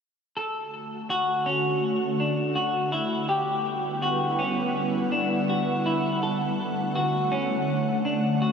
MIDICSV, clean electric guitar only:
0, 0, Header, 1, 2, 480
1, 0, Start_track
1, 0, Key_signature, 2, "major"
1, 0, Tempo, 731707
1, 246, Time_signature, 4, 2, 24, 8
1, 5590, End_track
2, 0, Start_track
2, 0, Title_t, "Clean electric guitar"
2, 0, Program_c, 0, 27
2, 240, Note_on_c, 0, 69, 69
2, 720, Note_off_c, 0, 69, 0
2, 722, Note_on_c, 0, 66, 68
2, 958, Note_on_c, 0, 61, 64
2, 964, Note_off_c, 0, 66, 0
2, 1440, Note_off_c, 0, 61, 0
2, 1443, Note_on_c, 0, 62, 56
2, 1676, Note_on_c, 0, 66, 65
2, 1684, Note_off_c, 0, 62, 0
2, 1914, Note_off_c, 0, 66, 0
2, 1917, Note_on_c, 0, 64, 63
2, 2154, Note_off_c, 0, 64, 0
2, 2157, Note_on_c, 0, 67, 70
2, 2637, Note_off_c, 0, 67, 0
2, 2639, Note_on_c, 0, 66, 70
2, 2878, Note_on_c, 0, 61, 63
2, 2882, Note_off_c, 0, 66, 0
2, 3355, Note_off_c, 0, 61, 0
2, 3358, Note_on_c, 0, 62, 63
2, 3602, Note_off_c, 0, 62, 0
2, 3605, Note_on_c, 0, 66, 71
2, 3840, Note_off_c, 0, 66, 0
2, 3843, Note_on_c, 0, 64, 68
2, 4083, Note_off_c, 0, 64, 0
2, 4086, Note_on_c, 0, 69, 81
2, 4559, Note_off_c, 0, 69, 0
2, 4562, Note_on_c, 0, 66, 68
2, 4800, Note_on_c, 0, 61, 68
2, 4804, Note_off_c, 0, 66, 0
2, 5279, Note_off_c, 0, 61, 0
2, 5282, Note_on_c, 0, 62, 60
2, 5522, Note_on_c, 0, 66, 61
2, 5524, Note_off_c, 0, 62, 0
2, 5590, Note_off_c, 0, 66, 0
2, 5590, End_track
0, 0, End_of_file